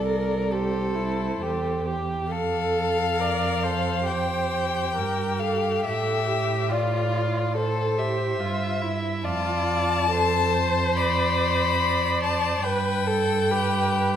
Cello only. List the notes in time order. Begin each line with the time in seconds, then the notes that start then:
Already playing: C2
1.41 E2
2.30 F2
4.97 G2
5.86 A2
8.40 G2
9.25 F2
12.64 G2